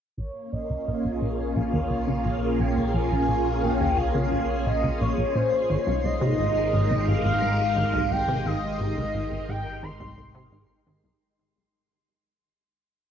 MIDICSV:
0, 0, Header, 1, 6, 480
1, 0, Start_track
1, 0, Tempo, 689655
1, 124, Time_signature, 4, 2, 24, 8
1, 9122, End_track
2, 0, Start_track
2, 0, Title_t, "Synth texture"
2, 0, Program_c, 0, 99
2, 129, Note_on_c, 0, 84, 76
2, 7816, Note_off_c, 0, 84, 0
2, 9122, End_track
3, 0, Start_track
3, 0, Title_t, "Soft synth lead"
3, 0, Program_c, 1, 80
3, 125, Note_on_c, 1, 73, 82
3, 362, Note_on_c, 1, 75, 97
3, 373, Note_off_c, 1, 73, 0
3, 1084, Note_on_c, 1, 77, 98
3, 1094, Note_off_c, 1, 75, 0
3, 1807, Note_on_c, 1, 79, 94
3, 1818, Note_off_c, 1, 77, 0
3, 2043, Note_off_c, 1, 79, 0
3, 2048, Note_on_c, 1, 80, 98
3, 2527, Note_on_c, 1, 79, 88
3, 2537, Note_off_c, 1, 80, 0
3, 2767, Note_on_c, 1, 77, 93
3, 2777, Note_off_c, 1, 79, 0
3, 3242, Note_off_c, 1, 77, 0
3, 3246, Note_on_c, 1, 75, 90
3, 3488, Note_on_c, 1, 73, 93
3, 3499, Note_off_c, 1, 75, 0
3, 3727, Note_on_c, 1, 72, 91
3, 3738, Note_off_c, 1, 73, 0
3, 3967, Note_on_c, 1, 73, 93
3, 3977, Note_off_c, 1, 72, 0
3, 4206, Note_on_c, 1, 75, 101
3, 4217, Note_off_c, 1, 73, 0
3, 4925, Note_off_c, 1, 75, 0
3, 4928, Note_on_c, 1, 77, 107
3, 5646, Note_on_c, 1, 79, 107
3, 5656, Note_off_c, 1, 77, 0
3, 5888, Note_on_c, 1, 75, 109
3, 5899, Note_off_c, 1, 79, 0
3, 6607, Note_on_c, 1, 79, 98
3, 6617, Note_off_c, 1, 75, 0
3, 6845, Note_on_c, 1, 84, 108
3, 6856, Note_off_c, 1, 79, 0
3, 7564, Note_off_c, 1, 84, 0
3, 9122, End_track
4, 0, Start_track
4, 0, Title_t, "String machine"
4, 0, Program_c, 2, 50
4, 123, Note_on_c, 2, 58, 62
4, 273, Note_on_c, 2, 61, 76
4, 443, Note_on_c, 2, 65, 83
4, 566, Note_on_c, 2, 68, 61
4, 3960, Note_on_c, 2, 56, 81
4, 3962, Note_off_c, 2, 61, 0
4, 3962, Note_off_c, 2, 68, 0
4, 4028, Note_on_c, 2, 63, 75
4, 4109, Note_on_c, 2, 70, 82
4, 4493, Note_on_c, 2, 67, 68
4, 4744, Note_off_c, 2, 58, 0
4, 5076, Note_off_c, 2, 65, 0
4, 7802, Note_off_c, 2, 56, 0
4, 7803, Note_off_c, 2, 67, 0
4, 7804, Note_off_c, 2, 63, 0
4, 7804, Note_off_c, 2, 70, 0
4, 9122, End_track
5, 0, Start_track
5, 0, Title_t, "Analog synth bass"
5, 0, Program_c, 3, 38
5, 122, Note_on_c, 3, 34, 80
5, 209, Note_off_c, 3, 34, 0
5, 363, Note_on_c, 3, 34, 70
5, 477, Note_off_c, 3, 34, 0
5, 483, Note_on_c, 3, 37, 73
5, 535, Note_off_c, 3, 37, 0
5, 604, Note_on_c, 3, 34, 78
5, 690, Note_off_c, 3, 34, 0
5, 722, Note_on_c, 3, 34, 69
5, 775, Note_off_c, 3, 34, 0
5, 843, Note_on_c, 3, 46, 72
5, 957, Note_off_c, 3, 46, 0
5, 1082, Note_on_c, 3, 34, 91
5, 1135, Note_off_c, 3, 34, 0
5, 1202, Note_on_c, 3, 39, 98
5, 1317, Note_off_c, 3, 39, 0
5, 1321, Note_on_c, 3, 37, 73
5, 1436, Note_off_c, 3, 37, 0
5, 1441, Note_on_c, 3, 49, 91
5, 1529, Note_off_c, 3, 49, 0
5, 1563, Note_on_c, 3, 34, 80
5, 1649, Note_off_c, 3, 34, 0
5, 1804, Note_on_c, 3, 34, 68
5, 1918, Note_off_c, 3, 34, 0
5, 1924, Note_on_c, 3, 37, 74
5, 1976, Note_off_c, 3, 37, 0
5, 2044, Note_on_c, 3, 34, 80
5, 2130, Note_off_c, 3, 34, 0
5, 2165, Note_on_c, 3, 34, 78
5, 2216, Note_off_c, 3, 34, 0
5, 2284, Note_on_c, 3, 46, 73
5, 2398, Note_off_c, 3, 46, 0
5, 2525, Note_on_c, 3, 34, 99
5, 2576, Note_off_c, 3, 34, 0
5, 2644, Note_on_c, 3, 39, 99
5, 2758, Note_off_c, 3, 39, 0
5, 2763, Note_on_c, 3, 37, 74
5, 2877, Note_off_c, 3, 37, 0
5, 2884, Note_on_c, 3, 49, 100
5, 2970, Note_off_c, 3, 49, 0
5, 3004, Note_on_c, 3, 34, 78
5, 3090, Note_off_c, 3, 34, 0
5, 3245, Note_on_c, 3, 34, 72
5, 3358, Note_off_c, 3, 34, 0
5, 3365, Note_on_c, 3, 37, 76
5, 3416, Note_off_c, 3, 37, 0
5, 3486, Note_on_c, 3, 34, 78
5, 3571, Note_off_c, 3, 34, 0
5, 3604, Note_on_c, 3, 34, 71
5, 3655, Note_off_c, 3, 34, 0
5, 3725, Note_on_c, 3, 46, 75
5, 3838, Note_off_c, 3, 46, 0
5, 3965, Note_on_c, 3, 32, 95
5, 4016, Note_off_c, 3, 32, 0
5, 4084, Note_on_c, 3, 36, 97
5, 4198, Note_off_c, 3, 36, 0
5, 4203, Note_on_c, 3, 36, 72
5, 4317, Note_off_c, 3, 36, 0
5, 4323, Note_on_c, 3, 48, 100
5, 4410, Note_off_c, 3, 48, 0
5, 4443, Note_on_c, 3, 32, 80
5, 4530, Note_off_c, 3, 32, 0
5, 4684, Note_on_c, 3, 32, 75
5, 4798, Note_off_c, 3, 32, 0
5, 4802, Note_on_c, 3, 36, 70
5, 4855, Note_off_c, 3, 36, 0
5, 4923, Note_on_c, 3, 32, 76
5, 5009, Note_off_c, 3, 32, 0
5, 5042, Note_on_c, 3, 32, 77
5, 5095, Note_off_c, 3, 32, 0
5, 5162, Note_on_c, 3, 44, 72
5, 5277, Note_off_c, 3, 44, 0
5, 5402, Note_on_c, 3, 32, 97
5, 5454, Note_off_c, 3, 32, 0
5, 5522, Note_on_c, 3, 36, 98
5, 5637, Note_off_c, 3, 36, 0
5, 5643, Note_on_c, 3, 36, 74
5, 5757, Note_off_c, 3, 36, 0
5, 5762, Note_on_c, 3, 48, 96
5, 5849, Note_off_c, 3, 48, 0
5, 5883, Note_on_c, 3, 32, 82
5, 5969, Note_off_c, 3, 32, 0
5, 6122, Note_on_c, 3, 32, 75
5, 6237, Note_off_c, 3, 32, 0
5, 6242, Note_on_c, 3, 36, 71
5, 6294, Note_off_c, 3, 36, 0
5, 6362, Note_on_c, 3, 32, 81
5, 6449, Note_off_c, 3, 32, 0
5, 6482, Note_on_c, 3, 32, 74
5, 6535, Note_off_c, 3, 32, 0
5, 6603, Note_on_c, 3, 44, 70
5, 6717, Note_off_c, 3, 44, 0
5, 6841, Note_on_c, 3, 32, 101
5, 6894, Note_off_c, 3, 32, 0
5, 6961, Note_on_c, 3, 36, 98
5, 7076, Note_off_c, 3, 36, 0
5, 7081, Note_on_c, 3, 36, 76
5, 7196, Note_off_c, 3, 36, 0
5, 7201, Note_on_c, 3, 48, 98
5, 7289, Note_off_c, 3, 48, 0
5, 7321, Note_on_c, 3, 32, 80
5, 7409, Note_off_c, 3, 32, 0
5, 7562, Note_on_c, 3, 32, 74
5, 7677, Note_off_c, 3, 32, 0
5, 7682, Note_on_c, 3, 36, 70
5, 7735, Note_off_c, 3, 36, 0
5, 9122, End_track
6, 0, Start_track
6, 0, Title_t, "Synth drone"
6, 0, Program_c, 4, 95
6, 123, Note_on_c, 4, 34, 85
6, 3940, Note_off_c, 4, 34, 0
6, 3964, Note_on_c, 4, 32, 87
6, 7780, Note_off_c, 4, 32, 0
6, 9122, End_track
0, 0, End_of_file